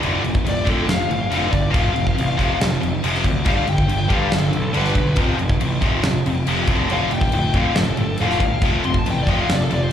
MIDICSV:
0, 0, Header, 1, 5, 480
1, 0, Start_track
1, 0, Tempo, 429799
1, 27, Time_signature, 4, 2, 24, 8
1, 11084, End_track
2, 0, Start_track
2, 0, Title_t, "Lead electric guitar"
2, 0, Program_c, 0, 29
2, 543, Note_on_c, 0, 74, 100
2, 758, Note_off_c, 0, 74, 0
2, 776, Note_on_c, 0, 69, 79
2, 994, Note_off_c, 0, 69, 0
2, 1007, Note_on_c, 0, 77, 91
2, 1462, Note_off_c, 0, 77, 0
2, 1490, Note_on_c, 0, 77, 88
2, 1678, Note_off_c, 0, 77, 0
2, 1683, Note_on_c, 0, 74, 83
2, 1910, Note_off_c, 0, 74, 0
2, 1914, Note_on_c, 0, 77, 105
2, 2860, Note_off_c, 0, 77, 0
2, 3881, Note_on_c, 0, 77, 97
2, 4105, Note_off_c, 0, 77, 0
2, 4117, Note_on_c, 0, 79, 95
2, 4576, Note_off_c, 0, 79, 0
2, 4609, Note_on_c, 0, 77, 79
2, 4830, Note_off_c, 0, 77, 0
2, 4857, Note_on_c, 0, 69, 101
2, 5307, Note_off_c, 0, 69, 0
2, 5320, Note_on_c, 0, 71, 101
2, 5778, Note_off_c, 0, 71, 0
2, 7738, Note_on_c, 0, 77, 100
2, 7954, Note_off_c, 0, 77, 0
2, 7959, Note_on_c, 0, 79, 99
2, 8417, Note_off_c, 0, 79, 0
2, 8459, Note_on_c, 0, 77, 86
2, 8674, Note_off_c, 0, 77, 0
2, 8689, Note_on_c, 0, 69, 100
2, 9142, Note_off_c, 0, 69, 0
2, 9166, Note_on_c, 0, 77, 104
2, 9621, Note_off_c, 0, 77, 0
2, 9881, Note_on_c, 0, 84, 98
2, 9989, Note_off_c, 0, 84, 0
2, 10036, Note_on_c, 0, 81, 85
2, 10127, Note_off_c, 0, 81, 0
2, 10171, Note_on_c, 0, 79, 84
2, 10255, Note_off_c, 0, 79, 0
2, 10305, Note_on_c, 0, 74, 76
2, 10378, Note_on_c, 0, 79, 91
2, 10382, Note_off_c, 0, 74, 0
2, 10500, Note_off_c, 0, 79, 0
2, 10500, Note_on_c, 0, 77, 89
2, 10599, Note_off_c, 0, 77, 0
2, 10641, Note_on_c, 0, 74, 85
2, 10730, Note_off_c, 0, 74, 0
2, 10762, Note_on_c, 0, 69, 92
2, 10850, Note_off_c, 0, 69, 0
2, 10874, Note_on_c, 0, 74, 93
2, 10979, Note_off_c, 0, 74, 0
2, 10979, Note_on_c, 0, 72, 80
2, 11079, Note_off_c, 0, 72, 0
2, 11084, End_track
3, 0, Start_track
3, 0, Title_t, "Distorted electric guitar"
3, 0, Program_c, 1, 30
3, 16, Note_on_c, 1, 38, 91
3, 24, Note_on_c, 1, 45, 92
3, 26, Note_on_c, 1, 50, 88
3, 232, Note_off_c, 1, 38, 0
3, 240, Note_off_c, 1, 45, 0
3, 246, Note_on_c, 1, 38, 70
3, 252, Note_off_c, 1, 50, 0
3, 254, Note_on_c, 1, 45, 77
3, 472, Note_off_c, 1, 38, 0
3, 476, Note_off_c, 1, 45, 0
3, 498, Note_on_c, 1, 38, 75
3, 507, Note_on_c, 1, 45, 85
3, 704, Note_off_c, 1, 38, 0
3, 718, Note_on_c, 1, 38, 89
3, 720, Note_off_c, 1, 45, 0
3, 733, Note_on_c, 1, 45, 96
3, 733, Note_on_c, 1, 50, 99
3, 949, Note_off_c, 1, 45, 0
3, 953, Note_off_c, 1, 38, 0
3, 962, Note_on_c, 1, 45, 87
3, 965, Note_off_c, 1, 50, 0
3, 966, Note_on_c, 1, 38, 72
3, 1190, Note_off_c, 1, 45, 0
3, 1192, Note_off_c, 1, 38, 0
3, 1213, Note_on_c, 1, 38, 82
3, 1222, Note_on_c, 1, 45, 81
3, 1435, Note_off_c, 1, 38, 0
3, 1439, Note_off_c, 1, 45, 0
3, 1456, Note_on_c, 1, 38, 91
3, 1465, Note_on_c, 1, 45, 89
3, 1467, Note_on_c, 1, 50, 99
3, 1656, Note_off_c, 1, 45, 0
3, 1664, Note_off_c, 1, 38, 0
3, 1669, Note_on_c, 1, 45, 85
3, 1678, Note_on_c, 1, 38, 78
3, 1692, Note_off_c, 1, 50, 0
3, 1898, Note_off_c, 1, 45, 0
3, 1901, Note_off_c, 1, 38, 0
3, 1903, Note_on_c, 1, 48, 88
3, 1905, Note_on_c, 1, 41, 87
3, 1918, Note_on_c, 1, 53, 93
3, 2145, Note_off_c, 1, 41, 0
3, 2146, Note_off_c, 1, 48, 0
3, 2157, Note_off_c, 1, 53, 0
3, 2158, Note_on_c, 1, 41, 71
3, 2159, Note_on_c, 1, 48, 78
3, 2388, Note_off_c, 1, 41, 0
3, 2388, Note_off_c, 1, 48, 0
3, 2400, Note_on_c, 1, 48, 80
3, 2401, Note_on_c, 1, 41, 81
3, 2628, Note_off_c, 1, 48, 0
3, 2629, Note_off_c, 1, 41, 0
3, 2644, Note_on_c, 1, 41, 92
3, 2654, Note_on_c, 1, 48, 105
3, 2661, Note_on_c, 1, 53, 102
3, 2880, Note_off_c, 1, 41, 0
3, 2885, Note_off_c, 1, 48, 0
3, 2888, Note_off_c, 1, 53, 0
3, 2897, Note_on_c, 1, 41, 69
3, 2897, Note_on_c, 1, 48, 78
3, 3117, Note_off_c, 1, 41, 0
3, 3117, Note_off_c, 1, 48, 0
3, 3134, Note_on_c, 1, 41, 75
3, 3136, Note_on_c, 1, 48, 80
3, 3355, Note_off_c, 1, 41, 0
3, 3356, Note_off_c, 1, 48, 0
3, 3384, Note_on_c, 1, 41, 91
3, 3390, Note_on_c, 1, 48, 92
3, 3395, Note_on_c, 1, 53, 102
3, 3610, Note_off_c, 1, 41, 0
3, 3613, Note_off_c, 1, 48, 0
3, 3615, Note_off_c, 1, 53, 0
3, 3632, Note_on_c, 1, 41, 70
3, 3635, Note_on_c, 1, 48, 84
3, 3838, Note_off_c, 1, 41, 0
3, 3843, Note_on_c, 1, 43, 94
3, 3844, Note_off_c, 1, 48, 0
3, 3848, Note_on_c, 1, 50, 102
3, 3856, Note_on_c, 1, 55, 88
3, 4062, Note_off_c, 1, 43, 0
3, 4072, Note_off_c, 1, 50, 0
3, 4075, Note_on_c, 1, 43, 62
3, 4086, Note_off_c, 1, 55, 0
3, 4086, Note_on_c, 1, 50, 78
3, 4306, Note_off_c, 1, 43, 0
3, 4311, Note_off_c, 1, 50, 0
3, 4328, Note_on_c, 1, 43, 81
3, 4335, Note_on_c, 1, 50, 87
3, 4547, Note_off_c, 1, 43, 0
3, 4553, Note_off_c, 1, 50, 0
3, 4560, Note_on_c, 1, 43, 90
3, 4566, Note_on_c, 1, 50, 106
3, 4571, Note_on_c, 1, 55, 105
3, 4790, Note_off_c, 1, 43, 0
3, 4795, Note_off_c, 1, 50, 0
3, 4803, Note_off_c, 1, 55, 0
3, 4804, Note_on_c, 1, 43, 68
3, 4808, Note_on_c, 1, 50, 75
3, 5021, Note_off_c, 1, 43, 0
3, 5024, Note_off_c, 1, 50, 0
3, 5035, Note_on_c, 1, 43, 74
3, 5037, Note_on_c, 1, 50, 87
3, 5265, Note_off_c, 1, 43, 0
3, 5267, Note_off_c, 1, 50, 0
3, 5283, Note_on_c, 1, 43, 89
3, 5284, Note_on_c, 1, 50, 92
3, 5293, Note_on_c, 1, 55, 90
3, 5507, Note_off_c, 1, 43, 0
3, 5517, Note_off_c, 1, 50, 0
3, 5520, Note_on_c, 1, 43, 72
3, 5524, Note_off_c, 1, 55, 0
3, 5531, Note_on_c, 1, 50, 76
3, 5748, Note_off_c, 1, 43, 0
3, 5753, Note_off_c, 1, 50, 0
3, 5757, Note_on_c, 1, 41, 86
3, 5765, Note_on_c, 1, 48, 84
3, 5775, Note_on_c, 1, 53, 94
3, 5981, Note_off_c, 1, 41, 0
3, 5989, Note_off_c, 1, 48, 0
3, 5994, Note_on_c, 1, 41, 74
3, 6002, Note_on_c, 1, 48, 71
3, 6005, Note_off_c, 1, 53, 0
3, 6225, Note_off_c, 1, 41, 0
3, 6229, Note_off_c, 1, 48, 0
3, 6256, Note_on_c, 1, 41, 78
3, 6267, Note_on_c, 1, 48, 88
3, 6476, Note_off_c, 1, 41, 0
3, 6479, Note_off_c, 1, 48, 0
3, 6492, Note_on_c, 1, 48, 92
3, 6493, Note_on_c, 1, 41, 95
3, 6509, Note_on_c, 1, 53, 98
3, 6723, Note_off_c, 1, 48, 0
3, 6724, Note_off_c, 1, 41, 0
3, 6732, Note_off_c, 1, 53, 0
3, 6738, Note_on_c, 1, 41, 70
3, 6738, Note_on_c, 1, 48, 72
3, 6957, Note_off_c, 1, 41, 0
3, 6957, Note_off_c, 1, 48, 0
3, 6996, Note_on_c, 1, 41, 77
3, 6996, Note_on_c, 1, 48, 85
3, 7205, Note_off_c, 1, 48, 0
3, 7206, Note_off_c, 1, 41, 0
3, 7227, Note_on_c, 1, 41, 94
3, 7228, Note_on_c, 1, 48, 94
3, 7235, Note_on_c, 1, 53, 104
3, 7451, Note_off_c, 1, 41, 0
3, 7451, Note_off_c, 1, 48, 0
3, 7455, Note_off_c, 1, 53, 0
3, 7461, Note_on_c, 1, 38, 98
3, 7478, Note_on_c, 1, 50, 101
3, 7480, Note_on_c, 1, 45, 109
3, 7688, Note_off_c, 1, 38, 0
3, 7696, Note_off_c, 1, 50, 0
3, 7697, Note_off_c, 1, 45, 0
3, 7701, Note_on_c, 1, 38, 90
3, 7711, Note_on_c, 1, 45, 81
3, 7719, Note_on_c, 1, 50, 97
3, 7928, Note_off_c, 1, 38, 0
3, 7933, Note_off_c, 1, 45, 0
3, 7937, Note_off_c, 1, 50, 0
3, 7942, Note_on_c, 1, 38, 63
3, 7953, Note_on_c, 1, 45, 73
3, 8159, Note_off_c, 1, 38, 0
3, 8164, Note_off_c, 1, 45, 0
3, 8189, Note_on_c, 1, 38, 77
3, 8192, Note_on_c, 1, 45, 85
3, 8402, Note_off_c, 1, 38, 0
3, 8404, Note_off_c, 1, 45, 0
3, 8424, Note_on_c, 1, 38, 91
3, 8428, Note_on_c, 1, 45, 94
3, 8438, Note_on_c, 1, 50, 106
3, 8646, Note_off_c, 1, 38, 0
3, 8651, Note_off_c, 1, 45, 0
3, 8656, Note_off_c, 1, 50, 0
3, 8659, Note_on_c, 1, 38, 66
3, 8665, Note_on_c, 1, 45, 78
3, 8877, Note_off_c, 1, 38, 0
3, 8880, Note_off_c, 1, 45, 0
3, 8905, Note_on_c, 1, 38, 79
3, 8916, Note_on_c, 1, 45, 81
3, 9120, Note_off_c, 1, 38, 0
3, 9126, Note_off_c, 1, 45, 0
3, 9165, Note_on_c, 1, 38, 92
3, 9172, Note_on_c, 1, 45, 99
3, 9178, Note_on_c, 1, 50, 98
3, 9380, Note_off_c, 1, 38, 0
3, 9383, Note_off_c, 1, 45, 0
3, 9386, Note_off_c, 1, 50, 0
3, 9406, Note_on_c, 1, 38, 72
3, 9413, Note_on_c, 1, 45, 83
3, 9611, Note_off_c, 1, 38, 0
3, 9614, Note_off_c, 1, 45, 0
3, 9644, Note_on_c, 1, 41, 83
3, 9646, Note_on_c, 1, 48, 95
3, 9655, Note_on_c, 1, 53, 96
3, 9859, Note_off_c, 1, 41, 0
3, 9861, Note_off_c, 1, 48, 0
3, 9865, Note_off_c, 1, 53, 0
3, 9881, Note_on_c, 1, 41, 64
3, 9881, Note_on_c, 1, 48, 77
3, 10088, Note_off_c, 1, 41, 0
3, 10089, Note_off_c, 1, 48, 0
3, 10125, Note_on_c, 1, 48, 84
3, 10127, Note_on_c, 1, 41, 79
3, 10330, Note_off_c, 1, 48, 0
3, 10331, Note_off_c, 1, 41, 0
3, 10357, Note_on_c, 1, 41, 89
3, 10367, Note_on_c, 1, 48, 94
3, 10372, Note_on_c, 1, 53, 110
3, 10576, Note_off_c, 1, 41, 0
3, 10581, Note_off_c, 1, 48, 0
3, 10583, Note_off_c, 1, 53, 0
3, 10599, Note_on_c, 1, 48, 80
3, 10602, Note_on_c, 1, 41, 72
3, 10808, Note_off_c, 1, 48, 0
3, 10809, Note_off_c, 1, 41, 0
3, 10829, Note_on_c, 1, 41, 81
3, 10840, Note_on_c, 1, 48, 93
3, 11043, Note_off_c, 1, 41, 0
3, 11048, Note_off_c, 1, 48, 0
3, 11084, End_track
4, 0, Start_track
4, 0, Title_t, "Picked electric bass"
4, 0, Program_c, 2, 34
4, 28, Note_on_c, 2, 29, 102
4, 208, Note_off_c, 2, 29, 0
4, 272, Note_on_c, 2, 29, 91
4, 450, Note_off_c, 2, 29, 0
4, 519, Note_on_c, 2, 29, 92
4, 695, Note_off_c, 2, 29, 0
4, 753, Note_on_c, 2, 41, 92
4, 931, Note_off_c, 2, 41, 0
4, 992, Note_on_c, 2, 29, 90
4, 1170, Note_off_c, 2, 29, 0
4, 1224, Note_on_c, 2, 31, 89
4, 1405, Note_off_c, 2, 31, 0
4, 1469, Note_on_c, 2, 29, 90
4, 1648, Note_off_c, 2, 29, 0
4, 1708, Note_on_c, 2, 31, 91
4, 1888, Note_off_c, 2, 31, 0
4, 1951, Note_on_c, 2, 29, 98
4, 2129, Note_off_c, 2, 29, 0
4, 2187, Note_on_c, 2, 29, 92
4, 2367, Note_off_c, 2, 29, 0
4, 2433, Note_on_c, 2, 33, 86
4, 2610, Note_off_c, 2, 33, 0
4, 2673, Note_on_c, 2, 29, 97
4, 2850, Note_off_c, 2, 29, 0
4, 2908, Note_on_c, 2, 29, 92
4, 3087, Note_off_c, 2, 29, 0
4, 3158, Note_on_c, 2, 29, 85
4, 3333, Note_off_c, 2, 29, 0
4, 3394, Note_on_c, 2, 29, 93
4, 3571, Note_off_c, 2, 29, 0
4, 3629, Note_on_c, 2, 38, 79
4, 3808, Note_off_c, 2, 38, 0
4, 3866, Note_on_c, 2, 31, 102
4, 4046, Note_off_c, 2, 31, 0
4, 4123, Note_on_c, 2, 31, 97
4, 4296, Note_off_c, 2, 31, 0
4, 4360, Note_on_c, 2, 31, 85
4, 4534, Note_off_c, 2, 31, 0
4, 4586, Note_on_c, 2, 43, 87
4, 4766, Note_off_c, 2, 43, 0
4, 4833, Note_on_c, 2, 31, 87
4, 5010, Note_off_c, 2, 31, 0
4, 5076, Note_on_c, 2, 35, 89
4, 5252, Note_off_c, 2, 35, 0
4, 5313, Note_on_c, 2, 31, 89
4, 5490, Note_off_c, 2, 31, 0
4, 5533, Note_on_c, 2, 35, 81
4, 5717, Note_off_c, 2, 35, 0
4, 5779, Note_on_c, 2, 29, 94
4, 5961, Note_off_c, 2, 29, 0
4, 6029, Note_on_c, 2, 29, 96
4, 6207, Note_off_c, 2, 29, 0
4, 6275, Note_on_c, 2, 33, 87
4, 6451, Note_off_c, 2, 33, 0
4, 6502, Note_on_c, 2, 29, 96
4, 6683, Note_off_c, 2, 29, 0
4, 6735, Note_on_c, 2, 29, 91
4, 6919, Note_off_c, 2, 29, 0
4, 6986, Note_on_c, 2, 29, 83
4, 7166, Note_off_c, 2, 29, 0
4, 7221, Note_on_c, 2, 29, 98
4, 7402, Note_off_c, 2, 29, 0
4, 7457, Note_on_c, 2, 29, 88
4, 7640, Note_off_c, 2, 29, 0
4, 7708, Note_on_c, 2, 29, 99
4, 7887, Note_off_c, 2, 29, 0
4, 7953, Note_on_c, 2, 29, 93
4, 8130, Note_off_c, 2, 29, 0
4, 8191, Note_on_c, 2, 29, 84
4, 8368, Note_off_c, 2, 29, 0
4, 8429, Note_on_c, 2, 41, 101
4, 8607, Note_off_c, 2, 41, 0
4, 8679, Note_on_c, 2, 29, 95
4, 8853, Note_off_c, 2, 29, 0
4, 8924, Note_on_c, 2, 31, 84
4, 9097, Note_off_c, 2, 31, 0
4, 9166, Note_on_c, 2, 29, 88
4, 9338, Note_off_c, 2, 29, 0
4, 9391, Note_on_c, 2, 31, 90
4, 9568, Note_off_c, 2, 31, 0
4, 9627, Note_on_c, 2, 29, 102
4, 9806, Note_off_c, 2, 29, 0
4, 9882, Note_on_c, 2, 29, 93
4, 10055, Note_off_c, 2, 29, 0
4, 10119, Note_on_c, 2, 33, 83
4, 10294, Note_off_c, 2, 33, 0
4, 10361, Note_on_c, 2, 29, 92
4, 10535, Note_off_c, 2, 29, 0
4, 10599, Note_on_c, 2, 29, 92
4, 10774, Note_off_c, 2, 29, 0
4, 10844, Note_on_c, 2, 29, 90
4, 11017, Note_off_c, 2, 29, 0
4, 11084, End_track
5, 0, Start_track
5, 0, Title_t, "Drums"
5, 33, Note_on_c, 9, 49, 78
5, 145, Note_off_c, 9, 49, 0
5, 272, Note_on_c, 9, 49, 57
5, 383, Note_off_c, 9, 49, 0
5, 389, Note_on_c, 9, 36, 88
5, 501, Note_off_c, 9, 36, 0
5, 518, Note_on_c, 9, 49, 77
5, 630, Note_off_c, 9, 49, 0
5, 749, Note_on_c, 9, 36, 80
5, 751, Note_on_c, 9, 49, 55
5, 861, Note_off_c, 9, 36, 0
5, 862, Note_off_c, 9, 49, 0
5, 995, Note_on_c, 9, 49, 73
5, 996, Note_on_c, 9, 38, 106
5, 1106, Note_off_c, 9, 49, 0
5, 1107, Note_off_c, 9, 38, 0
5, 1236, Note_on_c, 9, 49, 57
5, 1348, Note_off_c, 9, 49, 0
5, 1468, Note_on_c, 9, 49, 78
5, 1580, Note_off_c, 9, 49, 0
5, 1707, Note_on_c, 9, 36, 80
5, 1715, Note_on_c, 9, 49, 57
5, 1819, Note_off_c, 9, 36, 0
5, 1827, Note_off_c, 9, 49, 0
5, 1946, Note_on_c, 9, 36, 110
5, 1952, Note_on_c, 9, 49, 79
5, 2058, Note_off_c, 9, 36, 0
5, 2064, Note_off_c, 9, 49, 0
5, 2187, Note_on_c, 9, 49, 54
5, 2298, Note_off_c, 9, 49, 0
5, 2309, Note_on_c, 9, 36, 83
5, 2420, Note_off_c, 9, 36, 0
5, 2438, Note_on_c, 9, 49, 81
5, 2550, Note_off_c, 9, 49, 0
5, 2669, Note_on_c, 9, 36, 76
5, 2682, Note_on_c, 9, 49, 58
5, 2780, Note_off_c, 9, 36, 0
5, 2794, Note_off_c, 9, 49, 0
5, 2919, Note_on_c, 9, 49, 80
5, 2920, Note_on_c, 9, 38, 111
5, 3031, Note_off_c, 9, 49, 0
5, 3032, Note_off_c, 9, 38, 0
5, 3162, Note_on_c, 9, 49, 61
5, 3273, Note_off_c, 9, 49, 0
5, 3392, Note_on_c, 9, 49, 86
5, 3504, Note_off_c, 9, 49, 0
5, 3513, Note_on_c, 9, 38, 31
5, 3622, Note_on_c, 9, 36, 83
5, 3622, Note_on_c, 9, 49, 59
5, 3624, Note_off_c, 9, 38, 0
5, 3734, Note_off_c, 9, 36, 0
5, 3734, Note_off_c, 9, 49, 0
5, 3858, Note_on_c, 9, 49, 85
5, 3864, Note_on_c, 9, 36, 106
5, 3970, Note_off_c, 9, 49, 0
5, 3976, Note_off_c, 9, 36, 0
5, 4103, Note_on_c, 9, 49, 62
5, 4215, Note_off_c, 9, 49, 0
5, 4224, Note_on_c, 9, 36, 84
5, 4336, Note_off_c, 9, 36, 0
5, 4347, Note_on_c, 9, 49, 78
5, 4459, Note_off_c, 9, 49, 0
5, 4582, Note_on_c, 9, 36, 83
5, 4586, Note_on_c, 9, 49, 53
5, 4693, Note_off_c, 9, 36, 0
5, 4697, Note_off_c, 9, 49, 0
5, 4823, Note_on_c, 9, 49, 78
5, 4824, Note_on_c, 9, 38, 102
5, 4935, Note_off_c, 9, 49, 0
5, 4936, Note_off_c, 9, 38, 0
5, 5058, Note_on_c, 9, 49, 58
5, 5170, Note_off_c, 9, 49, 0
5, 5295, Note_on_c, 9, 49, 83
5, 5407, Note_off_c, 9, 49, 0
5, 5410, Note_on_c, 9, 38, 31
5, 5522, Note_off_c, 9, 38, 0
5, 5531, Note_on_c, 9, 36, 85
5, 5531, Note_on_c, 9, 49, 51
5, 5643, Note_off_c, 9, 36, 0
5, 5643, Note_off_c, 9, 49, 0
5, 5762, Note_on_c, 9, 49, 77
5, 5772, Note_on_c, 9, 36, 108
5, 5874, Note_off_c, 9, 49, 0
5, 5884, Note_off_c, 9, 36, 0
5, 6020, Note_on_c, 9, 49, 56
5, 6132, Note_off_c, 9, 49, 0
5, 6137, Note_on_c, 9, 36, 90
5, 6248, Note_off_c, 9, 36, 0
5, 6261, Note_on_c, 9, 49, 80
5, 6373, Note_off_c, 9, 49, 0
5, 6498, Note_on_c, 9, 36, 83
5, 6504, Note_on_c, 9, 49, 59
5, 6610, Note_off_c, 9, 36, 0
5, 6616, Note_off_c, 9, 49, 0
5, 6740, Note_on_c, 9, 49, 74
5, 6741, Note_on_c, 9, 38, 108
5, 6852, Note_off_c, 9, 49, 0
5, 6853, Note_off_c, 9, 38, 0
5, 6989, Note_on_c, 9, 49, 62
5, 7101, Note_off_c, 9, 49, 0
5, 7222, Note_on_c, 9, 49, 89
5, 7334, Note_off_c, 9, 49, 0
5, 7456, Note_on_c, 9, 36, 103
5, 7465, Note_on_c, 9, 49, 61
5, 7568, Note_off_c, 9, 36, 0
5, 7577, Note_off_c, 9, 49, 0
5, 7703, Note_on_c, 9, 49, 80
5, 7815, Note_off_c, 9, 49, 0
5, 7939, Note_on_c, 9, 49, 65
5, 8051, Note_off_c, 9, 49, 0
5, 8056, Note_on_c, 9, 36, 86
5, 8167, Note_off_c, 9, 36, 0
5, 8173, Note_on_c, 9, 49, 80
5, 8285, Note_off_c, 9, 49, 0
5, 8419, Note_on_c, 9, 36, 82
5, 8421, Note_on_c, 9, 49, 58
5, 8531, Note_off_c, 9, 36, 0
5, 8533, Note_off_c, 9, 49, 0
5, 8663, Note_on_c, 9, 49, 75
5, 8664, Note_on_c, 9, 38, 108
5, 8775, Note_off_c, 9, 49, 0
5, 8776, Note_off_c, 9, 38, 0
5, 8902, Note_on_c, 9, 49, 61
5, 9013, Note_off_c, 9, 49, 0
5, 9130, Note_on_c, 9, 49, 76
5, 9242, Note_off_c, 9, 49, 0
5, 9269, Note_on_c, 9, 38, 31
5, 9380, Note_off_c, 9, 38, 0
5, 9383, Note_on_c, 9, 49, 58
5, 9384, Note_on_c, 9, 36, 81
5, 9495, Note_off_c, 9, 49, 0
5, 9496, Note_off_c, 9, 36, 0
5, 9625, Note_on_c, 9, 36, 110
5, 9630, Note_on_c, 9, 49, 77
5, 9737, Note_off_c, 9, 36, 0
5, 9741, Note_off_c, 9, 49, 0
5, 9872, Note_on_c, 9, 49, 56
5, 9984, Note_off_c, 9, 49, 0
5, 9987, Note_on_c, 9, 36, 88
5, 10099, Note_off_c, 9, 36, 0
5, 10119, Note_on_c, 9, 49, 74
5, 10231, Note_off_c, 9, 49, 0
5, 10352, Note_on_c, 9, 36, 84
5, 10362, Note_on_c, 9, 49, 54
5, 10463, Note_off_c, 9, 36, 0
5, 10474, Note_off_c, 9, 49, 0
5, 10605, Note_on_c, 9, 49, 75
5, 10606, Note_on_c, 9, 38, 111
5, 10717, Note_off_c, 9, 49, 0
5, 10718, Note_off_c, 9, 38, 0
5, 10839, Note_on_c, 9, 49, 59
5, 10951, Note_off_c, 9, 49, 0
5, 11084, End_track
0, 0, End_of_file